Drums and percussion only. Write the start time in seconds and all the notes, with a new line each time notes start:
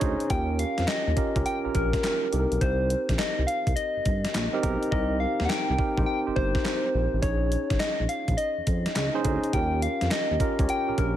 0.01 kick, closed hi-hat
0.20 closed hi-hat
0.30 kick, closed hi-hat
0.59 closed hi-hat
0.78 snare, closed hi-hat
0.88 snare, clap, closed hi-hat
1.17 kick, closed hi-hat
1.36 kick, closed hi-hat
1.46 closed hi-hat
1.75 kick, closed hi-hat
1.93 kick, snare, closed hi-hat
2.04 snare, clap, closed hi-hat
2.33 closed hi-hat
2.52 closed hi-hat
2.61 kick, closed hi-hat
2.90 closed hi-hat
3.09 kick, snare, closed hi-hat
3.19 snare, clap, closed hi-hat
3.48 closed hi-hat
3.67 kick, closed hi-hat
3.77 closed hi-hat
4.05 kick, closed hi-hat
4.25 snare, closed hi-hat
4.35 snare, clap, closed hi-hat
4.63 kick, closed hi-hat
4.83 closed hi-hat
4.92 kick
5.40 snare
5.50 snare, clap
5.79 kick
5.98 kick
6.36 kick
6.55 kick, snare
6.65 snare, clap
7.23 kick, closed hi-hat
7.52 closed hi-hat
7.70 kick, snare, closed hi-hat
7.80 snare, clap, closed hi-hat
8.09 closed hi-hat
8.28 kick, closed hi-hat
8.38 closed hi-hat
8.67 kick, closed hi-hat
8.86 snare, closed hi-hat
8.96 snare, clap, closed hi-hat
9.25 kick, closed hi-hat
9.44 closed hi-hat
9.53 kick, closed hi-hat
9.82 closed hi-hat
10.01 snare, closed hi-hat
10.11 snare, clap, closed hi-hat
10.40 kick, closed hi-hat
10.59 kick, closed hi-hat
10.69 closed hi-hat
10.98 kick, closed hi-hat